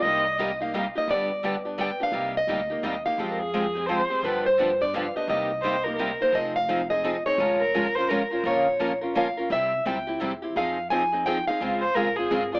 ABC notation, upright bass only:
X:1
M:3/4
L:1/8
Q:"Swing" 1/4=171
K:Cm
V:1 name="Upright bass" clef=bass
C,,6 | G,,,6 | C,,2 D,,2 E,,2 | F,,6 |
G,,6 | C,,6 | [K:Fm] F,,,6 | F,,,6 |
B,,,6 | C,,2 D,,2 =E,,2 | F,,6 | D,,2 B,,,2 A,,,2 |]